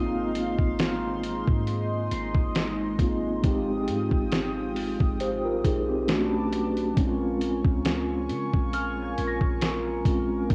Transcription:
0.00 0.56 G#1 loud
0.00 6.05 G#3 medium
0.00 2.95 A#3 medium
0.00 2.96 C4 medium
0.00 2.97 D#4 medium
0.00 3.40 D#4 medium
0.00 2.98 F4 medium
0.00 1.66 F5 medium
0.00 3.40 C6 loud
0.00 2.62 D#6 medium
0.00 0.31 G6 medium
0.35 closed hi-hat medium
0.59 1.44 G#1 medium
0.59 kick medium
0.79 snare loud
0.79 closed hi-hat medium
1.23 closed hi-hat medium
1.48 2.09 G#2 loud
1.48 kick medium
1.67 3.42 D#5 medium
1.67 closed hi-hat medium
2.12 2.34 G#1 loud
2.12 3.84 C6 medium
2.12 closed hi-hat medium
2.35 2.97 G#1 loud
2.35 kick medium
2.55 snare loud
2.55 closed hi-hat medium
2.99 3.42 G#1 loud
2.99 3.43 A#3 medium
2.99 3.42 C4 medium
2.99 3.44 D#4 medium
2.99 3.45 F4 medium
2.99 kick loud
2.99 closed hi-hat medium
3.42 3.90 G#1 loud
3.42 6.04 G#3 medium
3.42 5.17 C4 medium
3.42 5.18 D#4 medium
3.42 6.06 F4 medium
3.42 6.06 G5 medium
3.42 6.06 D#6 loud
3.42 kick loud
3.42 closed hi-hat medium
3.48 5.19 G4 medium
3.88 4.11 G#2 loud
3.88 closed hi-hat medium
4.11 4.96 G#1 loud
4.11 kick medium
4.32 snare loud
4.32 closed hi-hat medium
4.76 open hi-hat medium
5.00 5.62 G#1 loud
5.00 kick loud
5.20 5.44 G4 medium
5.20 5.43 C5 medium
5.20 closed hi-hat medium
5.45 5.64 F4 medium
5.45 5.64 A#4 medium
5.65 6.93 B1 loud
5.65 5.88 D#4 medium
5.65 5.87 G#4 medium
5.65 kick medium
5.65 closed hi-hat medium
5.89 6.31 C4 medium
5.89 6.30 G4 medium
6.08 6.97 A3 medium
6.08 6.97 C#4 medium
6.08 6.98 D4 medium
6.08 6.96 F#4 medium
6.08 6.98 F#4 medium
6.08 6.96 B4 medium
6.08 6.96 A5 medium
6.08 6.96 D6 medium
6.08 snare loud
6.08 closed hi-hat medium
6.53 closed hi-hat medium
6.53 open hi-hat medium
6.77 closed hi-hat medium
6.95 7.62 A#1 loud
6.95 10.01 G#3 medium
6.95 10.01 C4 medium
6.95 10.03 C#4 medium
6.95 10.46 F4 medium
6.95 10.55 A#4 medium
6.95 10.46 G#5 medium
6.95 10.47 C#6 loud
6.95 kick loud
6.95 closed hi-hat medium
7.01 7.06 D#4 medium
7.07 10.07 F4 medium
7.41 closed hi-hat medium
7.65 8.31 C#2 loud
7.65 kick medium
7.85 snare loud
7.85 closed hi-hat medium
8.30 8.52 C#3 loud
8.30 closed hi-hat medium
8.54 9.15 A#1 loud
8.54 kick medium
8.73 10.55 F6 medium
8.73 closed hi-hat medium
9.02 10.55 G#6 medium
9.18 9.40 A#1 loud
9.18 closed hi-hat medium
9.27 10.55 A#6 medium
9.41 10.03 A#1 loud
9.41 kick medium
9.61 snare loud
9.61 closed hi-hat medium
10.05 10.48 A#1 loud
10.05 10.50 G#3 medium
10.05 10.49 C4 medium
10.05 10.51 C#4 medium
10.05 10.51 F4 medium
10.05 kick loud
10.05 closed hi-hat medium
10.48 10.55 C2 loud
10.48 10.55 A#3 medium
10.48 10.55 C4 medium
10.48 10.55 D#4 medium
10.48 10.55 G4 medium
10.48 10.55 C6 loud
10.48 kick loud
10.48 closed hi-hat medium

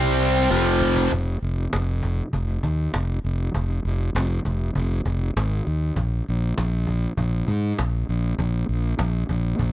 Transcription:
0.00 0.47 C2 loud
0.00 0.49 C3 medium
0.00 0.50 G3 medium
0.00 0.50 C4 loud
0.50 1.08 F1 medium
0.50 1.10 F2 medium
0.50 1.10 C3 medium
0.50 1.11 F3 loud
0.50 cajon slap medium
0.81 cajon bass medium
0.96 cajon bass medium
1.12 1.35 F1 medium
1.12 cajon bass loud
1.42 1.66 F1 medium
1.42 cajon slap soft
1.73 2.20 F1 medium
1.73 cajon slap loud
2.03 cajon bass medium
2.33 2.57 F1 medium
2.33 cajon bass medium
2.63 2.87 D#2 medium
2.63 cajon bass medium
2.94 3.17 F1 medium
2.94 cajon slap loud
3.24 3.48 F1 medium
3.24 cajon slap soft
3.54 3.78 F1 medium
3.54 cajon bass loud
3.85 4.08 F1 medium
3.85 cajon slap soft
4.15 4.38 F1 medium
4.15 cajon slap loud
4.45 4.69 F1 medium
4.45 cajon bass medium
4.75 4.99 F1 medium
4.75 cajon bass medium
4.75 cajon slap soft
5.05 5.29 F1 medium
5.05 cajon bass medium
5.36 5.60 G#1 medium
5.36 cajon slap loud
5.66 5.90 D#2 medium
5.66 cajon slap soft
5.96 6.20 A#1 medium
5.96 cajon bass loud
6.27 6.52 A#1 medium
6.27 cajon slap soft
6.58 7.05 A#1 medium
6.58 cajon slap medium
6.87 cajon bass medium
7.17 7.41 A#1 medium
7.17 cajon bass medium
7.48 7.72 G#2 medium
7.48 cajon bass medium
7.79 8.03 A#1 medium
7.79 cajon slap loud
8.08 8.33 A#1 medium
8.08 cajon slap soft
8.39 8.63 A#1 medium
8.39 cajon bass loud
8.69 8.93 A#1 medium
8.69 cajon slap soft
8.99 9.23 A#1 medium
8.99 cajon slap loud
9.29 9.53 A#1 medium
9.29 cajon bass medium
9.59 9.72 A#1 medium
9.59 cajon bass loud
9.59 cajon slap soft

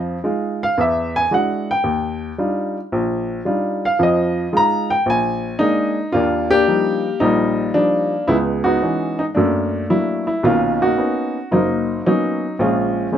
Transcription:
0.00 0.17 F2 medium
0.00 0.17 F3 medium
0.24 0.62 G#3 medium
0.24 0.62 D#4 soft
0.24 0.62 F4 medium
0.63 0.78 F5 medium
0.78 1.24 E2 medium
0.78 1.14 E5 medium
1.16 1.31 G#5 loud
1.31 1.69 G#3 soft
1.31 1.70 D4 soft
1.31 1.70 E4 soft
1.31 1.70 F#4 medium
1.31 1.68 F#5 medium
1.71 2.35 G5 medium
1.84 2.31 D#2 medium
2.38 2.76 G3 medium
2.38 2.77 D4 medium
2.38 2.77 D#4 soft
2.38 2.77 F4 medium
2.92 3.39 A#1 medium
3.45 3.84 G3 medium
3.45 3.84 D4 soft
3.45 3.84 D#4 soft
3.45 3.84 F4 medium
3.85 4.00 F5 medium
3.99 4.46 F2 medium
3.99 4.46 F3 medium
3.99 4.51 D#5 medium
4.53 4.91 G#3 medium
4.53 4.91 D#4 medium
4.53 4.91 F4 medium
4.57 4.90 A#5 loud
4.90 5.06 G5 medium
5.06 5.53 A#1 medium
5.06 5.94 G#5 loud
5.59 5.98 G#3 medium
5.59 5.98 A#3 medium
5.59 5.98 D4 medium
5.59 6.14 D#4 loud
6.12 6.61 D#2 medium
6.12 6.52 A#3 medium
6.12 6.52 D4 medium
6.12 6.51 F4 medium
6.51 7.21 A#3 medium
6.51 6.67 D4 medium
6.51 7.23 G4 loud
6.68 7.06 F3 soft
6.68 7.06 G3 soft
6.68 7.06 D4 soft
6.68 7.06 D#4 medium
7.20 7.68 A#1 medium
7.20 7.73 G3 medium
7.20 8.25 A#3 medium
7.20 7.74 D#4 medium
7.74 8.13 F3 soft
7.74 8.13 G3 soft
7.74 8.24 D4 medium
7.74 8.14 D#4 medium
8.28 8.75 C#2 medium
8.28 9.32 G#3 medium
8.28 8.65 B3 medium
8.28 8.36 E4 medium
8.64 8.81 B3 medium
8.64 8.81 D#4 medium
8.64 9.20 F#4 medium
8.82 9.21 E3 medium
8.82 9.21 B3 soft
8.82 9.21 C#4 soft
8.82 9.17 D#4 soft
9.19 9.24 D#4 medium
9.35 9.83 F#2 medium
9.35 10.40 A3 medium
9.35 9.89 A#3 medium
9.35 9.89 D4 medium
9.90 10.29 F#3 medium
9.90 10.29 A#3 soft
9.90 10.29 D4 soft
9.90 10.26 E4 medium
10.27 10.44 E4 medium
10.43 10.90 B1 medium
10.43 10.91 D#3 medium
10.43 10.82 A#3 medium
10.43 10.97 C#4 medium
10.43 10.79 F4 medium
10.82 10.96 A#3 medium
10.82 10.97 D#4 medium
10.82 11.48 F#4 medium
10.98 11.36 A#3 soft
10.98 11.36 B3 soft
10.98 11.36 C#4 soft
10.98 11.36 D#4 medium
11.52 11.98 F#1 medium
11.52 12.05 F#3 medium
11.52 12.05 A#3 medium
11.52 12.05 D#4 medium
12.06 12.56 F#3 medium
12.06 12.44 A#3 soft
12.06 12.44 B3 soft
12.06 12.44 C#4 soft
12.06 12.61 D#4 medium
12.59 13.06 A#1 medium
12.59 13.11 G#3 medium
12.59 13.12 C#4 medium
12.59 13.10 F4 medium
13.12 13.18 G#3 medium
13.12 13.18 A#3 soft
13.12 13.18 C4 soft
13.12 13.18 C#4 medium

